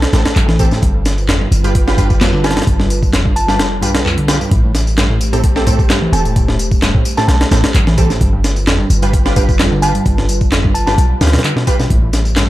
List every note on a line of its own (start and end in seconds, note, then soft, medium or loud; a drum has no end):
0.00 0.79 A3 medium
0.00 0.81 A4 medium
0.00 0.79 C5 medium
0.00 snare loud
0.00 closed hi-hat medium
0.13 0.25 A1 loud
0.13 0.25 A2 loud
0.13 0.22 C4 medium
0.13 0.22 G4 medium
0.13 0.22 A4 loud
0.13 snare loud
0.13 closed hi-hat medium
0.13 tambourine medium
0.25 0.34 A1 soft
0.25 snare loud
0.25 closed hi-hat medium
0.25 tambourine soft
0.36 0.77 A1 loud
0.36 0.47 G2 medium
0.36 clap loud
0.36 closed hi-hat medium
0.36 tambourine soft
0.48 0.70 E3 loud
0.48 snare soft
0.59 0.69 C4 loud
0.59 0.69 G4 medium
0.59 0.69 A4 loud
0.59 kick loud
0.59 closed hi-hat medium
0.59 tambourine medium
0.71 0.81 A2 medium
0.71 snare soft
0.71 tambourine soft
0.82 1.46 G1 loud
0.82 0.90 G2 medium
0.82 4.48 G3 medium
0.82 4.48 F4 medium
0.82 4.48 B4 medium
0.82 kick loud
0.82 closed hi-hat medium
0.82 tambourine soft
0.94 1.01 G2 medium
1.05 snare medium
1.05 closed hi-hat medium
1.05 tambourine medium
1.18 tambourine soft
1.28 1.40 F2 medium
1.28 snare loud
1.28 clap loud
1.28 closed hi-hat medium
1.28 tambourine soft
1.40 1.48 G2 loud
1.51 2.61 G1 loud
1.51 closed hi-hat medium
1.51 tambourine medium
1.64 1.74 G2 medium
1.64 1.72 F4 loud
1.64 1.72 G4 medium
1.64 1.72 B4 loud
1.64 closed hi-hat soft
1.64 tambourine soft
1.75 kick loud
1.75 closed hi-hat medium
1.75 tambourine soft
1.87 1.95 F4 loud
1.87 1.95 G4 medium
1.87 1.95 B4 loud
1.87 snare medium
1.97 2.09 G2 loud
1.97 2.12 F4 medium
1.97 2.12 G4 medium
1.97 2.12 B4 loud
1.97 kick medium
1.97 closed hi-hat medium
1.97 tambourine medium
2.10 kick loud
2.10 tambourine soft
2.20 2.32 F2 medium
2.20 snare loud
2.20 clap loud
2.20 closed hi-hat medium
2.20 tambourine soft
2.33 2.55 D3 loud
2.44 2.53 F4 loud
2.44 2.53 G4 medium
2.44 2.53 B4 loud
2.44 2.55 A5 medium
2.44 snare medium
2.44 closed hi-hat medium
2.44 tambourine medium
2.51 snare medium
2.51 closed hi-hat medium
2.56 2.66 G2 medium
2.56 snare medium
2.56 closed hi-hat medium
2.56 tambourine soft
2.62 snare medium
2.62 closed hi-hat medium
2.67 3.61 G1 loud
2.67 2.75 G2 medium
2.67 kick loud
2.67 closed hi-hat medium
2.67 tambourine soft
2.79 2.86 G2 medium
2.79 snare soft
2.90 closed hi-hat medium
2.90 tambourine medium
3.03 kick loud
3.03 tambourine soft
3.13 3.24 F2 medium
3.13 snare loud
3.13 clap loud
3.13 closed hi-hat medium
3.13 tambourine soft
3.25 3.32 G2 loud
3.25 kick medium
3.36 3.44 A5 medium
3.36 closed hi-hat medium
3.36 tambourine medium
3.48 3.59 G2 medium
3.48 3.57 F4 medium
3.48 3.57 G4 medium
3.48 3.57 B4 medium
3.48 3.56 A5 medium
3.48 snare soft
3.48 tambourine soft
3.59 3.84 F1 medium
3.59 snare loud
3.59 closed hi-hat medium
3.59 tambourine soft
3.82 4.46 B1 medium
3.82 3.94 G2 loud
3.82 3.92 F4 medium
3.82 3.92 G4 medium
3.82 3.92 B4 loud
3.82 closed hi-hat medium
3.82 tambourine medium
3.95 snare loud
3.95 closed hi-hat medium
3.95 tambourine soft
4.05 4.17 F2 medium
4.05 clap loud
4.05 tambourine soft
4.17 4.39 D3 loud
4.17 closed hi-hat medium
4.28 4.38 F4 loud
4.28 4.38 G4 medium
4.28 4.38 B4 loud
4.28 snare loud
4.28 closed hi-hat medium
4.28 tambourine medium
4.41 4.51 G2 medium
4.41 tambourine soft
4.51 6.08 A1 loud
4.51 4.60 A2 medium
4.51 8.17 A3 medium
4.51 8.17 G4 medium
4.51 8.17 C5 medium
4.51 kick loud
4.51 closed hi-hat medium
4.51 tambourine soft
4.64 4.71 A2 medium
4.75 snare medium
4.75 closed hi-hat medium
4.75 tambourine medium
4.87 tambourine soft
4.98 5.09 G2 medium
4.98 snare loud
4.98 clap loud
4.98 closed hi-hat medium
4.98 tambourine soft
5.10 5.17 A2 loud
5.21 closed hi-hat medium
5.21 tambourine medium
5.33 5.43 A2 medium
5.33 5.41 C4 medium
5.33 5.41 G4 medium
5.33 5.41 A4 loud
5.33 closed hi-hat soft
5.33 tambourine soft
5.44 kick loud
5.44 closed hi-hat medium
5.44 tambourine soft
5.56 5.64 C4 medium
5.56 5.64 G4 medium
5.56 5.64 A4 loud
5.56 snare medium
5.67 5.79 A2 loud
5.67 5.81 C4 loud
5.67 5.81 G4 medium
5.67 5.81 A4 loud
5.67 kick medium
5.67 closed hi-hat medium
5.67 tambourine medium
5.79 kick medium
5.79 tambourine soft
5.90 6.01 G2 medium
5.90 snare loud
5.90 clap loud
5.90 closed hi-hat medium
5.90 tambourine soft
6.02 6.24 E3 loud
6.13 7.00 E1 medium
6.13 6.22 C4 loud
6.13 6.22 G4 medium
6.13 6.22 A4 loud
6.13 6.24 A5 medium
6.13 closed hi-hat medium
6.13 tambourine medium
6.25 6.35 A2 medium
6.25 closed hi-hat soft
6.25 tambourine soft
6.36 6.44 A2 medium
6.36 kick loud
6.36 closed hi-hat medium
6.36 tambourine soft
6.48 6.55 A2 medium
6.48 snare medium
6.59 closed hi-hat medium
6.59 tambourine medium
6.71 kick loud
6.71 tambourine soft
6.82 6.94 G2 medium
6.82 snare loud
6.82 clap loud
6.82 closed hi-hat medium
6.82 tambourine soft
6.94 7.02 A2 loud
6.94 kick loud
7.05 closed hi-hat medium
7.05 tambourine medium
7.17 7.28 A2 medium
7.17 7.26 C4 medium
7.17 7.26 G4 medium
7.17 7.26 A4 medium
7.17 7.24 A5 medium
7.17 snare soft
7.17 tambourine soft
7.28 7.44 B1 medium
7.28 7.36 A5 medium
7.28 snare loud
7.28 closed hi-hat medium
7.28 tambourine soft
7.41 snare loud
7.41 closed hi-hat medium
7.51 7.63 A1 medium
7.51 7.63 A2 loud
7.51 7.61 C4 loud
7.51 7.61 G4 medium
7.51 7.61 A4 loud
7.51 snare loud
7.51 closed hi-hat medium
7.51 tambourine medium
7.64 7.73 A1 soft
7.64 snare loud
7.64 closed hi-hat medium
7.64 tambourine soft
7.74 8.15 A1 loud
7.74 7.86 G2 medium
7.74 clap loud
7.74 closed hi-hat medium
7.74 tambourine soft
7.87 8.09 E3 loud
7.87 snare soft
7.98 8.07 C4 medium
7.98 8.07 G4 medium
7.98 8.07 A4 loud
7.98 kick loud
7.98 closed hi-hat medium
7.98 tambourine medium
8.10 8.20 A2 medium
8.10 snare soft
8.10 tambourine soft
8.21 8.85 G1 loud
8.21 8.29 G2 medium
8.21 11.87 G3 medium
8.21 11.86 F4 medium
8.21 11.86 B4 medium
8.21 kick loud
8.21 closed hi-hat medium
8.21 tambourine soft
8.33 8.40 G2 medium
8.44 snare medium
8.44 closed hi-hat medium
8.44 tambourine medium
8.56 tambourine soft
8.67 8.78 F2 medium
8.67 snare loud
8.67 clap loud
8.67 closed hi-hat medium
8.67 tambourine soft
8.79 8.86 G2 loud
8.90 10.00 G1 medium
8.90 closed hi-hat medium
8.90 tambourine medium
9.02 9.13 G2 medium
9.02 9.11 F4 medium
9.02 9.11 G4 medium
9.02 9.11 B4 loud
9.02 closed hi-hat soft
9.02 tambourine soft
9.13 kick loud
9.13 closed hi-hat medium
9.13 tambourine soft
9.25 9.34 F4 loud
9.25 9.34 G4 medium
9.25 9.34 B4 loud
9.25 snare soft
9.36 9.48 G2 loud
9.36 9.51 F4 loud
9.36 9.51 G4 medium
9.36 9.51 B4 loud
9.36 kick loud
9.36 closed hi-hat medium
9.36 tambourine medium
9.49 kick loud
9.49 tambourine soft
9.59 9.71 F2 medium
9.59 snare loud
9.59 clap loud
9.59 closed hi-hat medium
9.59 tambourine soft
9.72 9.93 D3 loud
9.82 9.92 F4 loud
9.82 9.92 G4 medium
9.82 9.92 B4 loud
9.82 9.94 A5 medium
9.82 closed hi-hat medium
9.82 tambourine medium
9.95 10.05 G2 medium
9.95 closed hi-hat soft
9.95 tambourine soft
10.06 10.97 G1 medium
10.06 10.14 G2 medium
10.06 kick loud
10.06 closed hi-hat medium
10.06 tambourine soft
10.18 10.25 G2 medium
10.18 snare soft
10.29 closed hi-hat medium
10.29 tambourine medium
10.41 kick loud
10.41 tambourine soft
10.52 10.63 F2 medium
10.52 snare loud
10.52 clap loud
10.52 closed hi-hat medium
10.52 tambourine soft
10.64 10.71 G2 loud
10.64 kick medium
10.74 10.82 A5 medium
10.74 closed hi-hat medium
10.74 tambourine medium
10.87 10.97 G2 medium
10.87 10.95 F4 medium
10.87 10.95 G4 medium
10.87 10.95 B4 loud
10.87 10.94 A5 medium
10.87 snare soft
10.87 tambourine soft
10.98 11.14 B1 medium
10.98 closed hi-hat medium
10.98 tambourine soft
11.21 11.37 D2 medium
11.21 11.26 F2 loud
11.21 11.30 F4 loud
11.21 11.30 G4 medium
11.21 11.30 B4 loud
11.21 snare medium
11.21 closed hi-hat medium
11.21 tambourine medium
11.27 snare medium
11.27 closed hi-hat medium
11.33 11.40 B2 medium
11.33 snare medium
11.33 closed hi-hat medium
11.33 tambourine soft
11.39 snare medium
11.39 closed hi-hat medium
11.44 11.52 D3 medium
11.44 clap loud
11.44 closed hi-hat medium
11.44 tambourine soft
11.56 11.63 B2 loud
11.56 snare soft
11.67 11.76 F4 loud
11.67 11.76 G4 medium
11.67 11.76 B4 loud
11.67 kick loud
11.67 closed hi-hat medium
11.67 tambourine medium
11.79 11.86 B2 medium
11.79 snare soft
11.79 tambourine soft
11.90 12.49 A1 loud
11.90 11.98 A2 medium
11.90 12.49 A3 medium
11.90 12.49 G4 medium
11.90 12.49 C5 medium
11.90 kick loud
11.90 closed hi-hat medium
11.90 tambourine soft
12.02 12.09 A2 medium
12.13 snare medium
12.13 closed hi-hat medium
12.13 tambourine medium
12.25 tambourine soft
12.36 12.48 G2 medium
12.36 snare loud
12.36 clap loud
12.36 closed hi-hat medium
12.36 tambourine soft